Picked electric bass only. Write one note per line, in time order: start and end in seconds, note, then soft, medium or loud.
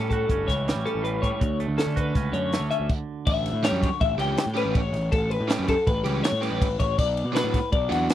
0.00 0.24 A2 medium
0.29 0.45 G1 medium
0.48 0.72 C#2 medium
0.75 0.83 A1 medium
0.95 1.19 A1 medium
1.22 1.30 A2 medium
1.41 1.65 D2 loud
1.68 1.76 D2 medium
1.86 2.11 D3 medium
2.15 2.31 C#2 medium
2.33 2.57 F#2 medium
2.60 2.69 D2 medium
2.80 2.88 D2 medium
3.27 3.51 A1 medium
3.53 3.70 A2 loud
3.72 3.89 F#2 medium
4.01 4.17 A1 loud
4.18 4.35 C#2 loud
4.46 4.63 A2 loud
4.66 4.90 A1 medium
4.92 5.09 A1 loud
5.12 5.36 A1 loud
5.41 5.56 A2 loud
5.59 5.75 F#2 medium
5.87 6.02 A1 loud
6.05 6.21 C#2 medium
6.32 6.49 A2 loud
6.51 6.75 A1 medium
6.79 6.95 A1 loud
6.99 7.22 B1 medium
7.25 7.41 B2 loud
7.44 7.60 A2 medium
7.73 7.88 B1 loud
7.91 8.07 E2 loud